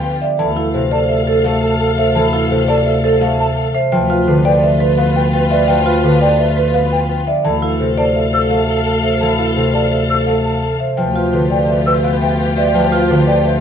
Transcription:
Already playing: bass clarinet D2, harp D3 F3 B3, string section F4 G4
0.04 alto flute B4, marimba G5
0.22 vibraphone D5, marimba E5
0.39 bass clarinet D2, harp E3, string section A4 F5, alto flute A4, marimba A5
0.57 vibraphone E4, alto flute A4, marimba F5
0.74 harp C3, alto flute A4, marimba C5
0.91 alto flute A4, vibraphone C5, marimba D5, flute A5
1.09 alto flute A4, marimba E5
1.27 alto flute A4, vibraphone A4, marimba C5
1.44 harp A3, alto flute A4, marimba F5
1.62 alto flute A4, flute A5
1.80 alto flute A4, marimba A5
1.98 alto flute A4, vibraphone C5, marimba E5
2.15 harp E3, alto flute A4, marimba A5
2.33 vibraphone E4, alto flute A4, marimba F5
2.51 harp C3, alto flute A4, marimba C5
2.68 alto flute A4, vibraphone C5, marimba D5, flute A5
2.86 alto flute A4, marimba E5
3.04 alto flute A4, vibraphone A4, marimba C5
3.21 harp A3, alto flute A4, marimba F5
3.39 alto flute A4, flute A5
3.56 alto flute A4, marimba A5
3.74 vibraphone C5, marimba E5
3.92 bass clarinet D2, harp F3, string section F4 B4, alto flute B4, marimba G5
4.10 vibraphone F4, alto flute B4, marimba F5
4.27 harp D3, marimba B4, alto flute B4
4.45 alto flute B4, marimba D5, vibraphone D5, flute G5
4.63 alto flute B4, marimba E5
4.80 marimba B4, vibraphone B4, alto flute B4
4.98 harp B3, alto flute B4, marimba F5
5.16 alto flute B4, flute G5
5.33 alto flute B4, marimba G5
5.50 alto flute B4, vibraphone D5, marimba E5
5.68 harp F3, alto flute B4, marimba G5
5.86 vibraphone F4, alto flute B4, marimba F5
6.04 harp D3, alto flute B4, marimba B4
6.21 alto flute B4, vibraphone D5, marimba D5, flute G5
6.39 alto flute B4, marimba E5
6.57 vibraphone B4, marimba B4, alto flute B4
6.74 harp B3, alto flute B4, marimba F5
6.92 alto flute B4, flute G5
7.10 alto flute B4, marimba G5
7.27 vibraphone D5, marimba E5
7.44 bass clarinet D2, harp E3, alto flute A4, string section A4 F5, marimba A5
7.62 vibraphone E4, alto flute A4, marimba F5
7.79 harp C3, alto flute A4, marimba C5
7.98 alto flute A4, vibraphone C5, marimba D5, flute A5
8.15 alto flute A4, marimba E5
8.33 alto flute A4, vibraphone A4, marimba C5, flute E6
8.50 harp A3, alto flute A4, marimba F5
8.68 alto flute A4, flute A5
8.85 alto flute A4, marimba A5
9.03 alto flute A4, vibraphone C5, marimba E5
9.21 harp E3, alto flute A4, marimba A5
9.38 vibraphone E4, alto flute A4, marimba F5
9.56 harp C3, alto flute A4, marimba C5
9.73 alto flute A4, vibraphone C5, marimba D5, flute A5
9.91 alto flute A4, marimba E5
10.09 alto flute A4, vibraphone A4, marimba C5, flute E6
10.26 harp A3, alto flute A4, marimba F5
10.45 alto flute A4, flute A5
10.62 alto flute A4, marimba A5
10.80 vibraphone C5, marimba E5
10.97 bass clarinet D2, harp F3, string section F4 G4, alto flute B4, marimba G5
11.15 vibraphone F4, alto flute B4, marimba F5
11.33 harp D3, marimba B4, alto flute B4
11.50 alto flute B4, marimba D5, vibraphone D5, flute G5
11.69 alto flute B4, marimba E5
11.86 marimba B4, vibraphone B4, alto flute B4, flute E6
12.03 harp B3, alto flute B4, marimba F5
12.21 alto flute B4, marimba E5, flute G5
12.39 alto flute B4, marimba G5
12.56 alto flute B4, vibraphone D5, marimba E5
12.74 harp F3, alto flute B4, marimba G5
12.92 vibraphone F4, alto flute B4, marimba F5
13.09 harp D3, alto flute B4, marimba B4
13.27 alto flute B4, marimba D5, vibraphone D5, flute G5
13.44 alto flute B4, marimba E5

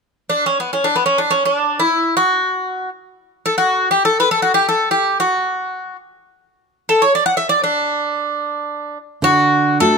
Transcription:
0.30 bouzouki D4
0.46 bouzouki C#4
0.60 bouzouki B3
0.73 bouzouki C#4
0.84 bouzouki D4
0.96 bouzouki B3
1.06 bouzouki C#4
1.18 bouzouki D4
1.30 bouzouki C#4
1.46 bouzouki D4
1.80 bouzouki E4
2.17 bouzouki F#4
3.46 bouzouki A4
3.58 bouzouki F#4
3.91 bouzouki G4
4.05 bouzouki A4
4.20 bouzouki B4
4.31 bouzouki A4
4.42 bouzouki F#4
4.54 bouzouki G4
4.69 bouzouki A4
4.91 bouzouki G4
5.20 bouzouki F#4
6.89 bouzouki A4
7.02 bouzouki C#5
7.15 bouzouki D5
7.26 bouzouki F#5
7.37 bouzouki E5
7.49 bouzouki D5
7.64 bouzouki D4
9.22 nylon-string guitar D3, bouzouki F#4
9.80 nylon-string guitar A3 D4 F#4, bouzouki A4

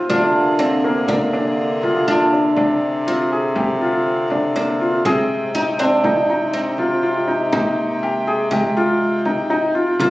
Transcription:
Already playing: oud C4
0.09 bass clarinet C3, harmonium D3 A#3 G#4, oud D4, felt piano F4, frame drum
0.59 oud C4, felt piano D4, frame drum
0.84 felt piano A#3
1.08 oud A#3, felt piano D4, frame drum
1.33 felt piano D4, frame drum
1.58 frame drum
1.83 felt piano F4, frame drum
2.08 oud D4, felt piano F4
2.33 felt piano D4
2.56 harmonium C4, felt piano D4, frame drum
3.07 oud C4, felt piano F4
3.32 felt piano G#4
3.56 felt piano G4, frame drum
3.81 felt piano F4, frame drum
4.06 frame drum
4.30 felt piano D4, frame drum
4.56 oud A#3, felt piano D4
4.80 felt piano F4, frame drum
5.05 bass clarinet C3, harmonium C3 G#3 G5, oud C4, felt piano G#4, frame drum
5.30 frame drum
5.55 oud D#4, felt piano D#4
5.79 felt piano C4, oud D4
6.04 felt piano D#4, frame drum
6.29 felt piano D#4, frame drum
6.53 oud C4, frame drum
6.78 felt piano F4, frame drum
7.03 felt piano F4
7.28 felt piano D#4
7.52 oud A#3, felt piano D#4, frame drum
7.77 frame drum
8.01 felt piano G4, frame drum
8.27 felt piano G#4
8.51 oud G#3, felt piano G4, frame drum
8.76 felt piano F4, frame drum
9.01 frame drum
9.25 felt piano D#4, frame drum
9.50 felt piano D#4
9.75 felt piano F4
9.99 harmonium A#2 D4, bass clarinet C3, oud A#3, felt piano F4, frame drum

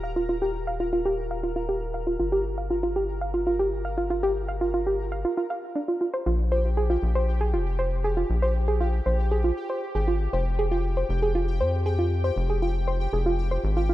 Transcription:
Already playing: analog synth bass D#1, synth texture A#4 A#5
0.03 synth arpeggio sound F5
0.16 synth arpeggio sound F4
0.29 synth arpeggio sound F4
0.42 synth arpeggio sound G4
0.67 synth arpeggio sound F5
0.80 synth arpeggio sound F4
0.93 synth arpeggio sound F4
1.05 synth arpeggio sound G4
1.31 synth arpeggio sound F5
1.43 synth arpeggio sound F4
1.56 synth arpeggio sound F4
1.69 synth arpeggio sound G4
1.94 synth arpeggio sound F5
2.07 synth arpeggio sound F4
2.19 analog synth bass G1, synth arpeggio sound F4
2.32 synth arpeggio sound G4
2.58 synth arpeggio sound F5
2.70 synth arpeggio sound F4
2.83 synth arpeggio sound F4
2.96 synth arpeggio sound G4
3.21 synth arpeggio sound F5
3.34 synth arpeggio sound F4
3.47 synth arpeggio sound F4
3.59 synth arpeggio sound G4
3.85 synth arpeggio sound F5
3.98 synth arpeggio sound F4
4.10 synth arpeggio sound F4
4.23 synth arpeggio sound G4
4.49 synth arpeggio sound F5
4.61 synth arpeggio sound F4
4.74 synth arpeggio sound F4
4.87 synth arpeggio sound G4
5.12 synth arpeggio sound F5
5.25 synth arpeggio sound F4
5.37 synth arpeggio sound F4
5.50 synth arpeggio sound F5
5.75 synth arpeggio sound D4
5.88 synth arpeggio sound F4
6.01 synth arpeggio sound F4
6.14 synth arpeggio sound C5
6.26 analog synth bass A#1, synth arpeggio sound F4, synth texture G4 G5
6.52 synth arpeggio sound C5
6.77 synth arpeggio sound G#4
6.90 synth arpeggio sound F4
7.03 analog synth bass A#1
7.15 synth arpeggio sound C5
7.41 synth arpeggio sound G#4
7.54 analog synth bass F1, synth arpeggio sound F4
7.79 synth arpeggio sound C5
8.04 synth arpeggio sound G#4
8.17 synth arpeggio sound F4
8.30 analog synth bass A#1
8.42 synth arpeggio sound C5
8.68 synth arpeggio sound G#4
8.81 synth arpeggio sound F4
9.06 analog synth bass A#1, synth arpeggio sound C5
9.31 synth arpeggio sound G#4
9.44 synth arpeggio sound F4
9.70 synth arpeggio sound C5
9.95 analog synth bass G#1, synth arpeggio sound G#4
10.08 synth arpeggio sound F4
10.33 analog synth bass F1, synth arpeggio sound C5
10.59 synth arpeggio sound G#4
10.71 synth arpeggio sound F4
10.97 synth arpeggio sound C5
11.09 analog synth bass F1
11.22 synth arpeggio sound G#4
11.35 synth arpeggio sound F4
11.60 analog synth bass F2, synth arpeggio sound C5
11.86 synth arpeggio sound G#4
11.99 synth arpeggio sound F4
12.24 synth arpeggio sound C5
12.36 analog synth bass F1
12.50 synth arpeggio sound G#4
12.62 synth arpeggio sound F4
12.88 synth arpeggio sound C5
13.13 analog synth bass F1, synth arpeggio sound G#4
13.26 synth arpeggio sound F4
13.51 synth arpeggio sound C5
13.64 analog synth bass G#1
13.77 synth arpeggio sound F4
13.89 synth arpeggio sound F4

